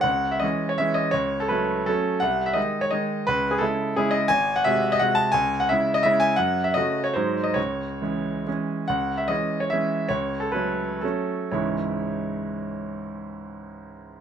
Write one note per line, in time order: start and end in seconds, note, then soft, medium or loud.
0.01 0.41 C#2 medium
0.01 0.31 F#5 medium
0.31 0.42 E5 medium
0.40 0.76 E3 soft
0.40 0.76 G#3 soft
0.40 0.77 C#4 soft
0.40 0.70 D#5 medium
0.69 0.79 C#5 medium
0.78 1.12 E3 soft
0.78 1.12 G#3 soft
0.78 1.12 C#4 soft
0.78 0.97 E5 medium
0.94 1.14 D#5 medium
1.11 1.50 C#2 soft
1.11 1.40 C#5 medium
1.40 1.51 A4 medium
1.48 1.84 F#3 soft
1.48 1.85 A3 soft
1.48 1.85 C#4 soft
1.48 1.87 B4 medium
1.86 2.19 F#3 soft
1.86 2.19 A3 soft
1.86 2.19 C#4 soft
1.86 2.21 A4 medium
2.20 2.56 C2 medium
2.20 2.47 F#5 medium
2.46 2.56 E5 medium
2.53 2.88 D#3 soft
2.53 2.88 G#3 soft
2.53 2.88 D#4 soft
2.53 2.82 D#5 medium
2.81 2.91 C#5 medium
2.91 3.23 D#3 soft
2.91 3.24 G#3 soft
2.91 3.24 D#4 soft
2.91 3.26 D#5 medium
3.27 3.61 C#2 medium
3.27 3.53 B4 medium
3.51 3.61 G#4 medium
3.58 3.93 C#3 soft
3.58 3.93 G#3 soft
3.58 3.93 E4 soft
3.58 3.95 A4 medium
3.96 4.28 C#3 soft
3.96 4.28 G#3 soft
3.96 4.28 E4 medium
3.96 4.14 G#4 medium
4.11 4.29 D#5 medium
4.28 4.64 G#1 medium
4.28 4.55 G#5 medium
4.56 4.65 F#5 medium
4.64 4.96 C3 soft
4.64 4.97 G#3 soft
4.64 4.97 F#4 soft
4.64 4.91 E5 medium
4.92 5.00 D#5 medium
4.99 5.31 C3 soft
4.99 5.31 G#3 soft
4.99 5.31 F#4 soft
4.99 5.16 F#5 medium
5.15 5.33 A5 medium
5.32 5.68 C#2 medium
5.32 5.59 G#5 medium
5.60 5.69 F#5 medium
5.69 6.03 C#3 soft
5.69 6.03 G#3 soft
5.69 6.03 E4 soft
5.69 5.96 E5 medium
5.94 6.04 D#5 medium
6.03 6.36 C#3 soft
6.03 6.36 G#3 medium
6.03 6.36 E4 medium
6.03 6.21 E5 medium
6.20 6.38 G#5 medium
6.36 6.74 F#2 medium
6.36 6.64 F#5 medium
6.64 6.75 E5 medium
6.74 7.12 C#3 soft
6.74 7.12 A3 soft
6.74 7.13 F#4 soft
6.74 7.05 D#5 medium
7.04 7.15 C#5 medium
7.14 7.56 G#2 medium
7.14 7.53 F#3 soft
7.14 7.54 G#3 soft
7.14 7.54 D#4 soft
7.14 7.45 C5 medium
7.44 7.56 D#5 medium
7.54 8.00 C#2 soft
7.54 8.46 C#5 medium
8.02 8.43 E3 soft
8.02 8.43 G#3 soft
8.02 8.43 C#4 soft
8.46 8.85 E3 soft
8.46 8.85 G#3 soft
8.46 8.86 C#4 soft
8.88 9.29 C#2 soft
8.88 9.19 F#5 medium
9.17 9.29 E5 medium
9.28 9.67 E3 soft
9.28 9.67 G#3 soft
9.28 9.68 C#4 soft
9.28 9.60 D#5 medium
9.60 9.71 C#5 medium
9.70 10.08 E3 soft
9.70 10.08 G#3 soft
9.70 10.08 C#4 soft
9.70 10.11 E5 medium
10.09 10.52 C#2 soft
10.09 10.41 C#5 medium
10.40 10.53 A4 medium
10.52 10.98 F#3 soft
10.52 10.99 A3 soft
10.52 10.99 C#4 soft
10.52 11.01 B4 medium
11.01 11.49 F#3 soft
11.01 11.49 A3 soft
11.01 11.50 C#4 soft
11.01 11.52 A4 soft
11.51 14.21 C#2 soft
11.51 14.21 G#2 soft
11.51 14.21 E3 soft
11.51 14.21 G#3 soft
11.51 14.21 C#4 soft
11.51 14.21 E4 soft
11.51 14.21 C#5 soft